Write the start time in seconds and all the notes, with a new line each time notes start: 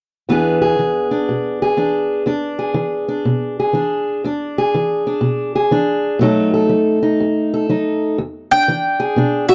0.29 E2 E3 B3 D4 G#4
0.61 G#4
0.79 E3
1.11 D4
1.29 B2
1.62 G#4
1.77 E3 D4
2.26 E2 D4
2.59 G#4
2.74 E3
3.08 D4
3.25 B2
3.60 G#4
3.73 E3 D4
4.24 E2 D4
4.58 G#4
4.75 E3
5.07 D4
5.21 B2
5.55 G#4
5.71 E3 D4
6.19 B2 F#3 A3 D#4 A4
6.54 A4
6.69 F#3
7.03 D#4
7.20 F#2
7.54 A4
7.69 F#3 D#4
8.18 E2
8.51 D4 G5
8.68 E3
9.00 G#4
9.16 B2 D4
9.49 F#4 E5